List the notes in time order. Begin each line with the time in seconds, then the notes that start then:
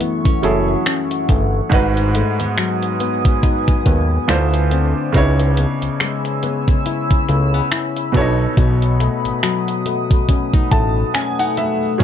Already playing: F#2 E3 F#3 A3 C#4 E4 G#4 A4 E5 F#5 C#6
0.00 B3, closed hi-hat
0.25 C#4, kick, closed hi-hat
0.42 F#1 F#3 A3 C#4 E4 G#4 A4, closed hi-hat
0.86 C#4, finger snap, closed hi-hat
1.11 closed hi-hat
1.29 G1 A3, kick, closed hi-hat
1.70 G#1 G#2 G#3 D#4 F#4 B4 G#5 D#6, kick, closed hi-hat
1.74 B4
1.97 closed hi-hat
2.15 A3, closed hi-hat
2.40 D#2 B3, closed hi-hat
2.58 F#3, finger snap, closed hi-hat
2.83 closed hi-hat
3.00 B3, closed hi-hat
3.25 kick, closed hi-hat
3.43 D#4, kick, closed hi-hat
3.68 kick, closed hi-hat
3.86 D#2 B3, kick, closed hi-hat
4.28 D2 D3 A3 E4 F4 C5, finger snap, closed hi-hat
4.54 closed hi-hat
4.71 C4, closed hi-hat
5.12 C#2 C#3 B3 D#4 E4 C#5 G#5 B5 E6, kick, closed hi-hat
5.17 C#5
5.39 closed hi-hat
5.57 B3, closed hi-hat
5.82 C#2, closed hi-hat
6.00 G#3, finger snap, closed hi-hat
6.25 closed hi-hat
6.43 B3, closed hi-hat
6.68 kick, closed hi-hat
6.86 E4, closed hi-hat
7.11 kick, closed hi-hat
7.29 C#2 A3, closed hi-hat
7.54 B3
7.72 E4, finger snap, closed hi-hat
7.96 closed hi-hat
8.12 B1 B2 A3 B3 D4 A4 F#5 D#6, kick, closed hi-hat
8.17 C#5
8.21 D#4
8.57 B1 B2, kick, closed hi-hat
8.82 closed hi-hat
9.00 A3, closed hi-hat
9.25 A1, closed hi-hat
9.43 F#3, finger snap, closed hi-hat
9.68 closed hi-hat
9.86 A3, closed hi-hat
10.11 kick, closed hi-hat
10.29 C#4, kick, closed hi-hat
10.54 D#4, kick, closed hi-hat
10.71 A1 A3 A5, kick, closed hi-hat
11.14 C#4 G#5, finger snap, closed hi-hat
11.39 D#4 F#5, closed hi-hat
11.57 A3 E5, closed hi-hat
11.98 F#1 F#2 F#3 C#4 E4 C#6, kick, closed hi-hat